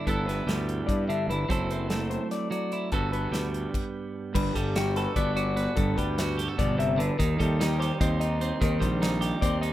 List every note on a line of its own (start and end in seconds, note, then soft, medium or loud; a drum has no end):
0.00 0.46 G3 medium
0.07 0.41 G1 medium
0.07 1.49 G2 medium
0.07 0.27 B3 medium
0.07 1.29 E4 medium
0.07 0.26 A4 medium
0.07 1.51 A4 medium
0.07 kick medium
0.07 closed hi-hat medium
0.26 1.49 B3 soft
0.26 0.67 B4 medium
0.26 snare soft
0.26 closed hi-hat medium
0.47 0.81 D2 medium
0.47 1.49 G3 medium
0.47 snare loud
0.47 closed hi-hat medium
0.69 closed hi-hat medium
0.87 1.29 G2 medium
0.87 1.08 D5 medium
0.87 kick loud
0.87 closed hi-hat medium
1.08 1.48 D3 medium
1.08 1.29 E5 medium
1.08 closed hi-hat medium
1.28 1.45 G1 medium
1.28 1.47 E4 medium
1.28 1.50 B4 medium
1.28 closed hi-hat medium
1.49 2.17 F#1 medium
1.49 2.50 F#3 medium
1.49 1.70 C4 medium
1.49 2.71 E4 medium
1.49 2.90 A4 medium
1.49 1.70 C5 medium
1.49 kick loud
1.49 closed hi-hat medium
1.70 2.90 C4 soft
1.70 1.90 B4 medium
1.70 closed hi-hat medium
1.90 2.90 A3 medium
1.90 2.10 A4 medium
1.90 snare medium
1.90 closed hi-hat medium
2.10 2.31 C5 medium
2.10 closed hi-hat medium
2.31 2.51 D5 medium
2.31 snare soft
2.31 closed hi-hat medium
2.51 2.89 F#3 medium
2.51 2.92 D5 medium
2.51 closed hi-hat medium
2.72 2.90 E4 medium
2.72 closed hi-hat medium
2.92 3.26 G1 medium
2.92 4.33 G2 medium
2.92 3.12 B3 medium
2.92 3.72 F#4 medium
2.92 3.12 A4 medium
2.92 3.72 A4 medium
2.92 kick loud
2.92 closed hi-hat medium
3.12 5.15 B3 medium
3.12 3.53 B4 medium
3.12 closed hi-hat medium
3.31 3.65 D2 medium
3.31 4.54 G3 medium
3.31 snare medium
3.31 closed hi-hat medium
3.54 closed hi-hat medium
3.74 kick medium
3.74 crash medium
4.35 4.52 G1 medium
4.35 5.75 G2 medium
4.35 4.54 B4 medium
4.35 kick loud
4.35 crash loud
4.54 5.06 G1 medium
4.54 5.97 G3 medium
4.54 4.75 A4 medium
4.54 kick medium
4.54 closed hi-hat medium
4.76 5.35 F#4 medium
4.76 4.96 G4 medium
4.76 snare loud
4.76 closed hi-hat medium
4.96 5.75 A4 medium
4.96 5.15 B4 medium
4.96 snare soft
4.96 closed hi-hat medium
5.16 5.67 G1 loud
5.16 5.55 B3 medium
5.16 5.34 D5 medium
5.16 kick loud
5.16 closed hi-hat medium
5.36 5.75 F#4 medium
5.36 5.77 D5 medium
5.36 closed hi-hat medium
5.56 7.19 B3 medium
5.56 snare soft
5.56 closed hi-hat medium
5.76 5.94 G1 loud
5.76 6.58 G2 medium
5.76 5.97 A4 medium
5.76 kick loud
5.76 closed hi-hat medium
5.96 6.48 D2 medium
5.96 7.39 G3 medium
5.96 6.37 B4 medium
5.96 kick medium
5.96 closed hi-hat medium
6.18 7.18 F#4 medium
6.18 snare loud
6.18 closed hi-hat medium
6.38 6.48 G4 medium
6.38 snare soft
6.38 closed hi-hat medium
6.48 7.19 A4 soft
6.58 7.09 G1 medium
6.58 6.78 B2 medium
6.58 6.79 D5 medium
6.58 kick loud
6.58 closed hi-hat medium
6.78 6.99 C3 medium
6.78 6.99 E5 medium
6.78 closed hi-hat medium
6.98 7.18 D3 medium
6.98 7.18 B4 medium
6.98 closed hi-hat medium
7.18 7.36 D#2 medium
7.18 8.59 D#3 medium
7.18 7.38 A#4 medium
7.18 kick loud
7.18 closed hi-hat medium
7.38 7.90 D#2 medium
7.38 8.80 G3 medium
7.38 7.60 A4 medium
7.38 kick medium
7.38 closed hi-hat medium
7.60 8.20 D#4 medium
7.60 7.80 G4 medium
7.60 snare loud
7.60 closed hi-hat medium
7.79 9.21 G4 medium
7.79 8.00 C5 medium
7.79 snare soft
7.79 closed hi-hat medium
8.01 8.51 D#2 loud
8.01 8.41 C4 medium
8.01 8.19 D#5 medium
8.01 kick loud
8.01 closed hi-hat medium
8.20 8.59 D#4 medium
8.20 8.61 D#5 medium
8.20 closed hi-hat medium
8.41 9.42 C4 medium
8.41 closed hi-hat medium
8.61 8.78 D#2 loud
8.61 9.73 D#3 medium
8.61 8.82 A#4 medium
8.61 kick loud
8.61 closed hi-hat medium
8.80 9.32 A#1 medium
8.80 9.73 G3 medium
8.80 9.22 C5 medium
8.80 kick medium
8.80 closed hi-hat medium
9.02 9.61 D#4 medium
9.02 snare medium
9.02 closed hi-hat medium
9.21 9.73 G4 medium
9.21 snare soft
9.21 closed hi-hat medium
9.41 9.73 D#2 medium
9.41 9.73 C4 medium
9.41 9.61 D5 medium
9.41 kick loud
9.41 closed hi-hat medium
9.61 9.73 D#4 medium
9.61 9.73 D#5 medium
9.61 closed hi-hat medium